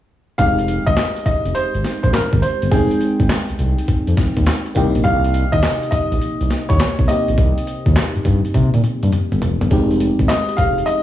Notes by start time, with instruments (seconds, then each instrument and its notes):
0.38 analog synth bass F1, fm electric piano G#3 C4 D#4 G4, grand piano F5, kick, closed hi-hat
0.58 closed hi-hat
0.68 closed hi-hat
0.86 analog synth bass G#1, grand piano D#5, kick, closed hi-hat
0.97 snare, clap, closed hi-hat
1.16 closed hi-hat
1.26 analog synth bass F1, grand piano D#5, kick, closed hi-hat
1.45 analog synth bass F1, closed hi-hat
1.55 grand piano C5, closed hi-hat
1.74 analog synth bass G#1, closed hi-hat
1.84 snare, closed hi-hat
2.03 analog synth bass A#1, grand piano C5, kick, closed hi-hat
2.13 analog synth bass G#1, grand piano A#4, snare, clap, closed hi-hat
2.33 analog synth bass G#1, kick, closed hi-hat
2.42 grand piano C5, closed hi-hat
2.62 analog synth bass G1, closed hi-hat
2.71 analog synth bass F1, fm electric piano G#3 C4 D#4 G5, grand piano G#4, kick, closed hi-hat
2.91 closed hi-hat
3.01 closed hi-hat
3.20 analog synth bass G#1, kick, closed hi-hat
3.29 snare, clap, closed hi-hat
3.49 analog synth bass C2, closed hi-hat
3.59 analog synth bass C2, closed hi-hat
3.78 closed hi-hat
3.88 analog synth bass F2, kick, closed hi-hat
4.07 analog synth bass F2, closed hi-hat
4.17 kick, snare, closed hi-hat
4.36 analog synth bass D#2, kick, closed hi-hat
4.46 snare, clap, closed hi-hat
4.66 closed hi-hat
4.75 analog synth bass C2, fm electric piano C3 A#3 D#4 G4, kick, closed hi-hat
4.95 analog synth bass A#1, closed hi-hat
5.04 analog synth bass C2, grand piano F5, kick, closed hi-hat
5.25 closed hi-hat
5.34 closed hi-hat
5.52 analog synth bass D#2, grand piano D#5, kick, closed hi-hat
5.63 snare, clap, closed hi-hat
5.82 closed hi-hat
5.91 analog synth bass A#1, grand piano D#5, kick, closed hi-hat
6.12 analog synth bass A#1, closed hi-hat
6.21 closed hi-hat
6.41 analog synth bass C2, closed hi-hat
6.51 snare, closed hi-hat
6.69 analog synth bass D#2, grand piano C#5, kick, closed hi-hat
6.79 analog synth bass C2, snare, clap, closed hi-hat
6.99 analog synth bass C2, kick, closed hi-hat
7.08 fm electric piano A#3 C4 D#4 G4, grand piano D#5, closed hi-hat
7.28 analog synth bass A#1, closed hi-hat
7.38 analog synth bass C2, kick, closed hi-hat
7.58 closed hi-hat
7.67 closed hi-hat
7.86 analog synth bass D#2, kick, closed hi-hat
7.96 snare, clap, closed hi-hat
8.15 analog synth bass G2, closed hi-hat
8.25 analog synth bass G2, kick, closed hi-hat
8.45 closed hi-hat
8.54 analog synth bass C3, kick, closed hi-hat, high tom
8.74 analog synth bass A#2, closed hi-hat, high tom
8.84 closed hi-hat, mid tom
9.03 analog synth bass G2, closed hi-hat, mid tom
9.12 closed hi-hat, mid tom
9.32 analog synth bass G1, closed hi-hat, mid tom
9.42 analog synth bass F1, closed hi-hat, floor tom
9.61 analog synth bass G1, closed hi-hat, floor tom
9.70 analog synth bass F1, fm electric piano G#3 C4 D#4 G4, kick, closed hi-hat
9.91 closed hi-hat
10.00 closed hi-hat
10.19 analog synth bass G#1, kick, closed hi-hat
10.28 grand piano D#5, snare, clap, closed hi-hat
10.49 closed hi-hat
10.57 analog synth bass F1, grand piano F5, kick, closed hi-hat
10.78 closed hi-hat
10.86 grand piano D#5, closed hi-hat